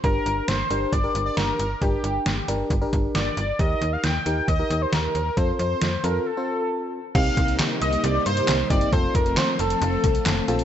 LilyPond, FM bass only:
\new Staff \with { instrumentName = "FM bass" } { \clef bass \time 4/4 \key g \minor \tempo 4 = 135 g,,8 g,,8 g,,8 g,,8 g,,8 g,,8 g,,8 g,,8 | g,,8 g,,8 g,,8 g,,8 g,,8 g,,8 g,,8 g,,8 | ees,8 ees,8 ees,8 ees,8 ees,8 ees,8 ees,8 ees,8 | f,8 f,8 f,8 f,8 r2 |
c,8 c,8. r16 c,8 c,8 g,8 c,8 g,,8 | f,,8 f,,8. r16 f,,8 f,,8 c,8 f,,8 bes,,8 | }